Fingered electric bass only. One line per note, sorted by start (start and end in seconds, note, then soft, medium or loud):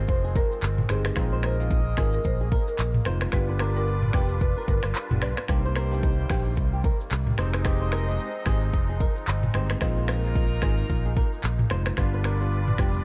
0.09 0.40 F1 loud
0.63 0.82 G1 loud
0.90 1.09 G1 loud
1.17 1.94 A#1 loud
1.98 2.17 G#1 medium
2.25 2.56 A#1 loud
2.79 2.99 A#1 loud
3.06 3.26 F1 medium
3.33 4.10 G1 loud
4.14 4.53 F1 medium
4.68 4.80 G1 medium
4.84 4.92 G1 medium
5.11 5.19 F1 loud
5.22 5.34 B1 medium
5.49 6.26 C2 loud
6.30 6.57 A#1 loud
6.57 6.88 C2 loud
7.11 7.31 C2 medium
7.38 8.17 F1 loud
8.46 8.74 G#1 loud
8.74 9.05 F1 loud
9.28 9.47 G1 loud
9.55 9.74 G1 loud
9.82 10.59 A#1 loud
10.62 10.82 G#1 medium
10.90 11.21 A#1 loud
11.44 11.63 A#1 loud
11.71 11.90 F1 medium
11.98 12.75 G1 loud
12.79 12.98 F1 medium